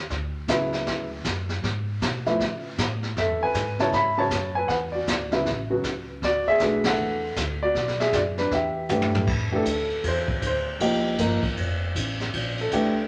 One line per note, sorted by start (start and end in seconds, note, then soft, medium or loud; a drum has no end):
0.10 0.47 D2 medium
0.10 brush sweep soft
0.10 kick soft
0.10 snare soft
0.48 0.85 C#2 medium
0.48 1.06 C#3 medium
0.48 1.06 F#3 medium
0.48 1.06 B3 medium
0.48 1.07 E4 medium
0.48 kick soft
0.48 snare medium
0.48 hi-hat pedal medium
0.73 snare soft
0.86 1.24 D2 medium
0.86 brush sweep medium
0.86 kick soft
0.86 snare soft
1.24 1.62 F#2 medium
1.24 kick soft
1.24 snare medium
1.24 hi-hat pedal medium
1.49 snare soft
1.63 2.00 G#2 medium
1.63 brush sweep soft
1.63 kick soft
1.63 snare soft
2.01 2.38 B2 medium
2.01 kick soft
2.01 snare medium
2.01 hi-hat pedal medium
2.26 2.39 F3 medium
2.26 2.39 A3 medium
2.26 2.39 B3 medium
2.26 2.39 E4 medium
2.26 snare soft
2.39 2.77 C#3 medium
2.39 brush sweep medium
2.39 kick soft
2.39 snare soft
2.78 3.15 A2 medium
2.78 kick soft
2.78 snare medium
2.78 hi-hat pedal medium
3.03 snare soft
3.16 3.28 F#2 medium
3.16 3.41 A4 medium
3.16 3.42 E5 medium
3.16 brush sweep medium
3.16 kick soft
3.16 snare soft
3.28 3.40 E2 medium
3.41 3.53 C#2 medium
3.41 3.78 B4 medium
3.41 3.77 G#5 medium
3.54 3.91 G#2 medium
3.54 kick soft
3.54 snare medium
3.54 hi-hat pedal medium
3.79 3.92 C#3 medium
3.79 3.92 F#3 medium
3.79 3.92 B3 medium
3.79 3.92 E4 medium
3.79 3.94 C#5 medium
3.79 3.94 A5 medium
3.79 snare soft
3.92 4.30 G#2 medium
3.92 4.17 E5 medium
3.92 4.18 B5 loud
3.92 brush sweep medium
3.92 kick soft
3.92 snare soft
4.18 4.30 C#3 medium
4.18 4.30 F#3 medium
4.18 4.30 B3 medium
4.18 4.30 F#4 medium
4.18 4.54 C#5 medium
4.18 4.57 A5 loud
4.30 4.68 F#2 medium
4.30 kick soft
4.30 snare medium
4.30 hi-hat pedal medium
4.55 4.69 B4 medium
4.55 4.70 G#5 medium
4.68 5.06 E2 medium
4.68 4.76 B4 medium
4.68 4.74 F#5 medium
4.68 brush sweep medium
4.68 kick soft
4.68 snare soft
4.92 5.30 F#4 medium
4.92 5.28 D5 medium
5.07 5.44 D2 medium
5.07 kick soft
5.07 snare medium
5.07 hi-hat pedal medium
5.32 5.45 C#3 medium
5.32 5.45 F#3 medium
5.32 5.45 B3 medium
5.32 5.45 E4 medium
5.32 snare soft
5.45 5.83 A1 medium
5.45 brush sweep soft
5.45 kick soft
5.45 snare soft
5.70 5.83 C#3 medium
5.70 5.83 F#3 medium
5.70 5.83 B3 medium
5.70 5.83 F#4 medium
5.83 6.21 C#2 medium
5.83 kick soft
5.83 snare medium
5.83 hi-hat pedal medium
6.22 6.59 D2 medium
6.22 6.47 F#4 medium
6.22 6.46 D5 loud
6.22 brush sweep soft
6.22 kick soft
6.22 snare soft
6.48 6.84 G#4 medium
6.48 6.87 E5 loud
6.60 6.97 B1 medium
6.60 7.18 E3 medium
6.60 7.19 A3 medium
6.60 7.19 D4 medium
6.60 7.19 F#4 medium
6.60 kick soft
6.60 snare medium
6.60 hi-hat pedal medium
6.84 7.35 A4 medium
6.84 7.34 F#5 loud
6.84 snare medium
6.84 ride medium
6.98 7.36 E2 medium
6.98 brush sweep soft
7.36 7.74 D2 medium
7.36 kick soft
7.36 snare medium
7.36 hi-hat pedal medium
7.63 7.98 F#4 medium
7.63 8.01 D5 loud
7.74 8.12 B1 medium
7.74 brush sweep soft
7.74 kick soft
7.74 snare soft
7.88 snare soft
8.00 8.13 G#4 medium
8.00 8.13 E5 medium
8.00 snare soft
8.13 8.50 F#2 medium
8.13 8.21 F#4 medium
8.13 8.20 D5 medium
8.13 kick soft
8.13 snare medium
8.13 hi-hat pedal medium
8.38 8.52 D4 medium
8.38 8.52 B4 medium
8.38 snare soft
8.51 8.88 E2 medium
8.51 8.88 G4 medium
8.51 8.88 E5 medium
8.51 brush sweep soft
8.51 kick soft
8.51 snare soft
8.89 9.26 G2 medium
8.89 9.28 E3 medium
8.89 9.28 A3 medium
8.89 9.28 D4 medium
8.89 9.28 G4 medium
8.89 hi-hat pedal medium
8.89 high tom soft
9.02 high tom medium
9.15 floor tom medium
9.27 9.65 F2 medium
9.27 kick medium
9.27 crash medium
9.52 9.65 E3 medium
9.52 9.65 A3 medium
9.52 9.65 D4 medium
9.52 9.65 G4 medium
9.56 10.03 A4 medium
9.65 10.03 D2 medium
9.65 kick soft
9.65 hi-hat pedal medium
9.65 ride medium
9.90 ride soft
10.04 10.41 E2 medium
10.04 kick soft
10.04 ride medium
10.08 10.42 C5 medium
10.28 kick medium
10.42 10.79 D2 medium
10.42 kick soft
10.42 hi-hat pedal medium
10.42 ride medium
10.46 10.68 C5 medium
10.80 11.18 C2 medium
10.80 11.18 F3 medium
10.80 11.18 A#3 medium
10.80 11.18 D#4 medium
10.80 11.18 G4 medium
10.80 kick soft
10.80 ride medium
11.18 11.42 G1 medium
11.18 11.41 F3 medium
11.18 11.42 A#3 medium
11.18 11.42 D#4 medium
11.18 11.42 A#4 medium
11.18 kick soft
11.18 hi-hat pedal medium
11.18 ride medium
11.42 muted upright bass stroke soft
11.42 kick medium
11.42 ride soft
11.57 11.94 F1 medium
11.57 kick soft
11.57 ride medium
11.95 12.32 A1 medium
11.95 kick soft
11.95 hi-hat pedal medium
11.95 ride medium
12.20 snare soft
12.20 ride soft
12.33 12.71 A#1 medium
12.33 kick soft
12.33 ride medium
12.58 13.08 A4 medium
12.58 ride soft
12.71 13.08 C2 medium
12.71 12.94 E3 medium
12.71 12.94 A3 medium
12.71 12.95 D4 medium
12.71 12.95 G4 medium
12.71 kick soft
12.71 hi-hat pedal medium
12.71 ride medium